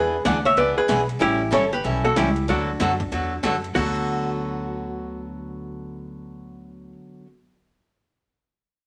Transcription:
0.00 0.24 E2 medium
0.00 0.14 E3 soft
0.00 0.14 B3 soft
0.00 0.14 D4 medium
0.00 0.14 G#4 medium
0.00 0.24 G#4 medium
0.00 0.25 B4 medium
0.25 0.56 D2 medium
0.25 0.36 E3 medium
0.25 0.36 B3 medium
0.25 0.37 D4 medium
0.25 0.37 G#4 medium
0.25 0.44 D5 medium
0.25 0.46 F#5 loud
0.25 snare medium
0.25 hi-hat pedal medium
0.25 ride medium
0.45 0.56 C#5 medium
0.45 0.58 E5 medium
0.45 ride soft
0.57 0.76 C#2 medium
0.57 0.78 E3 medium
0.57 0.78 B3 medium
0.57 0.78 D4 medium
0.57 0.78 G#4 medium
0.57 0.76 B4 medium
0.57 0.77 D5 medium
0.57 ride medium
0.77 1.07 G#4 medium
0.77 1.07 B4 medium
0.77 muted upright bass stroke soft
0.88 1.20 B1 medium
0.88 1.00 E3 medium
0.88 1.00 B3 medium
0.88 1.00 D4 medium
0.88 1.00 G#4 medium
0.88 snare medium
0.88 hi-hat pedal medium
0.88 ride medium
1.09 ride soft
1.19 1.52 A1 medium
1.19 1.41 E3 soft
1.19 1.41 G3 medium
1.19 1.41 C#4 medium
1.19 1.41 E4 medium
1.19 1.51 E4 medium
1.19 1.51 G4 medium
1.19 1.41 A4 medium
1.19 ride medium
1.51 1.83 G1 medium
1.51 1.63 E3 medium
1.51 1.63 G3 medium
1.51 1.63 C#4 medium
1.51 1.63 E4 medium
1.51 1.64 A4 medium
1.51 1.71 A4 medium
1.51 1.74 C#5 medium
1.51 snare medium
1.51 hi-hat pedal medium
1.51 ride medium
1.73 2.02 G4 medium
1.73 2.04 B4 medium
1.73 ride soft
1.84 2.15 B1 medium
1.84 2.05 E3 medium
1.84 2.05 G3 medium
1.84 2.05 C#4 medium
1.84 2.05 E4 medium
1.84 2.05 A4 medium
1.84 ride medium
2.04 2.15 F#4 medium
2.04 2.17 A4 medium
2.16 2.48 C#2 medium
2.16 2.28 E3 medium
2.16 2.28 G3 medium
2.16 2.28 C#4 medium
2.16 2.46 E4 medium
2.16 2.28 E4 medium
2.16 2.49 G4 medium
2.16 2.28 A4 medium
2.16 snare medium
2.16 hi-hat pedal medium
2.16 ride medium
2.36 ride soft
2.48 2.79 D2 medium
2.48 2.69 D3 soft
2.48 2.69 F#3 medium
2.48 2.69 B3 medium
2.48 3.60 D4 medium
2.48 2.69 F#4 medium
2.48 3.61 F#4 medium
2.48 2.69 A4 medium
2.48 ride medium
2.80 3.11 F#2 medium
2.80 2.91 D3 medium
2.80 2.91 F#3 medium
2.80 2.91 B3 medium
2.80 2.92 F#4 medium
2.80 2.92 A4 medium
2.80 snare medium
2.80 hi-hat pedal medium
2.80 ride medium
3.00 kick medium
3.00 ride soft
3.12 3.43 E2 medium
3.12 3.32 D3 medium
3.12 3.33 F#3 medium
3.12 3.33 B3 medium
3.12 3.33 F#4 medium
3.12 3.33 A4 medium
3.12 ride soft
3.43 3.75 F#2 loud
3.43 3.55 D3 medium
3.43 3.55 F#3 medium
3.43 3.55 B3 medium
3.43 3.55 F#4 medium
3.43 3.55 A4 medium
3.43 snare medium
3.43 hi-hat pedal medium
3.43 ride medium
3.64 ride soft
3.74 6.93 D2 loud
3.74 7.24 D3 medium
3.74 7.25 F#3 medium
3.74 7.26 B3 medium
3.74 6.92 F#4 medium
3.74 7.27 F#4 medium
3.74 7.27 A4 medium
3.74 kick medium
3.74 crash medium
3.95 crash soft

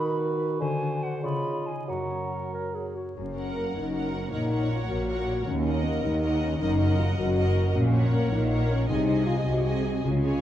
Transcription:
0.00 0.58 D#3 medium
0.00 0.62 D#3 soft
0.00 0.62 B3 soft
0.00 0.59 F#4 soft
0.00 1.02 F#4 soft
0.00 0.38 B4 soft
0.00 0.63 B4 soft
0.00 0.17 F#5 soft
0.00 0.17 B5 medium
0.18 1.25 F#5 soft
0.39 0.62 B4 soft
0.60 1.25 D3 soft
0.60 1.26 D3 soft
0.60 1.25 F#4 soft
0.60 1.26 C5 soft
0.60 1.04 G#5 medium
0.82 1.26 D4 soft
1.03 1.26 F#4 soft
1.03 1.26 C5 soft
1.03 1.23 F#5 soft
1.23 1.71 C#3 soft
1.23 1.90 C#3 soft
1.23 1.71 F4 soft
1.23 1.91 D#5 soft
1.23 1.68 B5 medium
1.46 1.90 D#4 soft
1.66 1.90 F4 soft
1.66 1.91 G#4 soft
1.66 1.87 G#5 soft
1.87 3.16 F#2 soft
1.87 2.94 F#3 soft
1.87 2.48 F#4 soft
1.87 2.97 A#4 soft
1.87 2.51 F#5 soft
2.11 3.35 C#4 soft
2.32 3.55 A#4 soft
2.53 2.76 A#4 soft
2.53 2.95 C#5 soft
2.75 2.97 G#4 soft
2.75 3.93 F#5 soft
2.95 3.16 F#4 soft
2.95 3.74 C#5 soft
3.17 3.68 F#1 soft
3.17 4.34 F#2 soft
3.17 3.68 F#2 soft
3.17 3.53 C#4 soft
3.35 4.51 C#4 soft
3.35 3.92 A#4 soft
3.35 3.93 A#4 soft
3.35 3.93 F#5 soft
3.56 3.75 A#3 medium
3.56 4.70 A#4 soft
3.74 4.26 F#1 soft
3.74 4.26 F#2 soft
3.74 4.13 D#4 medium
3.74 4.12 C#5 soft
3.93 4.31 A#4 soft
3.93 5.08 F#5 soft
3.93 4.32 F#5 soft
4.13 4.32 C#4 soft
4.13 4.89 C#5 soft
4.31 4.83 A#1 soft
4.31 4.83 A#2 soft
4.31 5.48 A#2 soft
4.31 4.69 D#4 medium
4.31 4.51 A#4 soft
4.31 4.49 C#5 soft
4.31 4.51 F#5 soft
4.50 6.62 C#4 soft
4.50 5.08 A#4 soft
4.50 5.07 C#5 soft
4.50 5.08 F#5 soft
4.70 4.79 F4 medium
4.70 5.84 A#4 soft
4.88 5.40 A#1 soft
4.88 5.40 A#2 medium
4.88 5.45 F#4 medium
4.88 5.27 C#5 soft
5.08 5.46 A#4 soft
5.08 5.46 C#5 soft
5.08 5.46 F#5 soft
5.08 6.22 F#5 soft
5.28 6.62 C#5 soft
5.46 5.97 D#2 medium
5.46 6.62 D#3 soft
5.46 5.84 C#4 medium
5.65 6.79 D#4 soft
5.65 6.21 A#4 soft
5.65 6.21 D#5 soft
5.65 6.22 F#5 soft
5.84 6.03 A#3 medium
5.84 6.98 A#4 soft
6.03 6.54 D#2 soft
6.03 6.54 D#2 medium
6.03 6.42 D#4 medium
6.03 6.41 D#5 soft
6.22 6.60 A#4 soft
6.22 6.59 D#5 soft
6.22 7.36 F#5 soft
6.22 6.60 F#5 soft
6.41 6.60 C#4 medium
6.41 7.17 D#5 soft
6.60 7.11 F#1 medium
6.60 7.11 F#2 medium
6.60 7.77 F#2 medium
6.60 6.97 D#4 medium
6.60 6.78 A#4 soft
6.60 6.78 D#5 soft
6.60 6.78 F#5 soft
6.79 7.77 D#4 soft
6.79 7.35 A#4 soft
6.79 7.34 D#5 soft
6.79 7.36 F#5 soft
6.98 7.06 F4 medium
6.98 8.12 A#4 soft
7.17 7.68 F#1 medium
7.17 7.68 F#2 medium
7.17 7.74 F#4 medium
7.17 7.55 D#5 soft
7.35 7.74 A#4 soft
7.35 7.73 D#5 medium
7.35 8.50 F#5 soft
7.35 7.75 F#5 soft
7.56 7.77 D#5 soft
7.74 8.25 A#1 medium
7.74 8.25 A#2 medium
7.74 8.91 A#2 medium
7.74 8.12 C#4 medium
7.94 8.91 C#4 soft
7.94 8.50 A#4 soft
7.94 8.49 C#5 soft
7.94 8.50 F#5 soft
8.13 8.32 A#3 medium
8.13 8.90 A#4 soft
8.31 8.82 A#1 medium
8.31 8.82 A#2 medium
8.31 8.69 D#4 medium
8.31 8.69 C#5 soft
8.50 8.88 A#4 soft
8.50 8.88 C#5 soft
8.50 10.06 F#5 soft
8.50 8.89 F#5 soft
8.70 8.89 C#4 medium
8.70 8.90 C#5 soft
8.88 9.39 C2 medium
8.88 9.39 C3 medium
8.88 10.06 C3 medium
8.88 9.26 D#4 medium
8.88 9.06 G#4 soft
8.88 9.07 D#5 soft
8.88 9.07 G#5 soft
9.07 10.06 D#4 soft
9.07 9.64 G#4 soft
9.07 9.64 D#5 soft
9.07 9.64 G#5 soft
9.26 9.35 F4 medium
9.26 9.83 D#5 soft
9.46 9.97 C2 medium
9.46 9.97 C3 medium
9.46 10.03 F#4 medium
9.46 10.41 G#4 soft
9.65 10.03 G#4 soft
9.65 10.03 D#5 soft
9.65 10.41 G#5 soft
9.65 10.04 G#5 soft
9.85 10.06 D#5 soft
10.03 10.41 C#2 soft
10.03 10.41 C#3 soft
10.03 10.41 F4 medium
10.23 10.41 F4 soft
10.23 10.41 G#4 soft
10.23 10.41 C#5 soft
10.23 10.41 G#5 soft

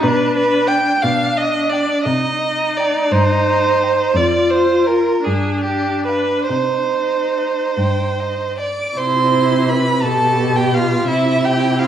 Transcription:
0.03 0.85 B2 medium
0.03 1.02 D4 medium
0.03 0.36 B4 medium
0.37 0.69 B4 medium
0.68 1.03 G5 medium
0.68 0.96 G5 soft
1.01 1.88 B2 medium
1.01 2.08 D4 medium
1.01 1.39 F5 medium
1.37 1.71 D#5 medium
1.70 2.03 D5 medium
1.70 1.98 G5 soft
2.04 2.93 C3 medium
2.04 4.18 D#4 medium
2.04 2.78 D#5 medium
2.77 3.14 D5 medium
2.77 3.05 G5 soft
3.12 3.96 G2 medium
3.12 4.17 C5 medium
3.83 4.08 G5 soft
4.14 5.04 F2 medium
4.14 5.25 F4 medium
4.14 4.52 D5 medium
4.50 4.88 C5 medium
4.87 5.26 A#4 medium
4.87 5.17 G#5 soft
5.25 6.27 G2 soft
5.25 6.52 D4 soft
5.25 5.63 G#4 soft
5.64 6.06 G4 soft
6.06 6.49 B4 soft
6.06 6.40 F5 soft
6.50 7.55 C3 soft
6.50 8.39 D#4 soft
6.50 8.55 C5 soft
7.38 7.69 D#5 soft
7.77 8.77 G2 soft
7.77 8.22 G5 soft
8.20 8.60 D#5 soft
8.59 8.99 D5 soft
8.59 8.99 D6 soft
8.97 10.05 C3 medium
8.97 10.00 E4 soft
8.97 9.71 C5 soft
8.97 9.70 C6 medium
9.69 10.06 B4 medium
9.69 10.04 B5 medium
10.02 11.09 B2 medium
10.02 11.06 G4 soft
10.02 10.60 A4 medium
10.02 10.57 A5 medium
10.56 10.79 G4 medium
10.56 10.76 G5 medium
10.74 11.08 F4 medium
10.74 11.07 F5 medium
11.07 11.87 C3 medium
11.07 11.46 E4 medium
11.07 11.87 E4 medium
11.07 11.47 E5 medium
11.45 11.85 G4 medium
11.45 11.81 G5 medium
11.79 11.87 F5 medium
11.83 11.87 F4 medium

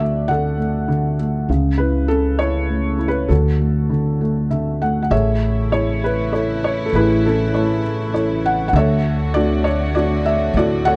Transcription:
0.00 1.46 D2 medium
0.00 0.27 D3 medium
0.00 0.56 A3 soft
0.00 0.25 F#4 soft
0.00 1.51 D5 medium
0.00 0.29 E5 medium
0.28 0.87 D3 soft
0.28 1.16 A4 medium
0.28 1.15 F#5 medium
0.57 1.18 A3 soft
0.88 1.47 D3 soft
1.19 1.48 A3 soft
1.49 3.27 C#2 medium
1.49 3.27 C#3 medium
1.78 2.39 E4 soft
1.78 2.06 B4 medium
2.08 3.27 C#4 soft
2.08 2.40 A4 medium
2.39 2.96 E4 soft
2.39 3.06 C#5 medium
2.69 3.28 A3 soft
2.98 3.28 E4 soft
3.08 3.28 B4 medium
3.28 5.08 D2 medium
3.28 3.88 D3 medium
3.28 4.47 F#4 soft
3.28 4.46 A4 medium
3.59 4.19 A3 soft
3.90 4.49 D3 soft
4.21 4.80 A3 soft
4.51 5.10 D3 soft
4.51 4.79 E5 medium
4.82 5.10 A3 soft
4.82 5.01 F#5 medium
5.02 5.11 F#5 soft
5.11 6.89 A1 medium
5.11 8.70 C#3 medium
5.11 10.96 A3 medium
5.11 6.89 A3 medium
5.11 8.70 E4 medium
5.11 5.71 G#4 medium
5.11 5.71 C#5 medium
5.11 5.68 E5 medium
5.72 6.31 E4 soft
5.72 6.31 G#4 soft
5.72 6.00 C#5 medium
6.04 6.34 B4 medium
6.32 6.91 E4 soft
6.32 6.84 A4 soft
6.32 6.63 C#5 medium
6.64 6.85 C#5 medium
6.86 6.93 A4 medium
6.93 8.70 A1 medium
6.93 8.71 E3 medium
6.93 7.25 E4 medium
6.93 7.81 G#4 medium
6.93 7.25 B4 medium
7.26 8.42 C#4 medium
7.26 7.52 E4 medium
7.26 8.12 A4 medium
7.53 8.12 A3 soft
7.53 8.12 E4 soft
7.53 8.12 C#5 soft
8.14 8.72 E4 soft
8.14 8.72 A4 soft
8.14 8.72 C#5 medium
8.46 8.66 F#5 medium
8.68 8.74 F#5 medium
8.73 10.50 D2 medium
8.73 10.50 D3 medium
8.73 10.96 D3 medium
8.73 10.96 F#4 medium
8.73 9.62 A4 medium
8.73 9.37 E5 medium
8.77 9.62 C#5 medium
9.34 9.93 A3 medium
9.34 9.93 D4 soft
9.34 9.93 F#4 soft
9.34 9.65 D5 medium
9.64 9.92 C#5 medium
9.95 10.53 A3 soft
9.95 10.54 D4 soft
9.95 10.54 F#4 medium
9.95 10.26 D5 medium
10.26 10.56 E5 medium
10.54 10.96 D2 medium
10.54 10.96 A2 medium
10.54 10.85 A4 medium
10.54 10.84 D5 medium
10.59 10.96 F#4 medium
10.85 10.96 A4 medium
10.85 10.96 C#5 medium
10.85 10.96 F#5 loud

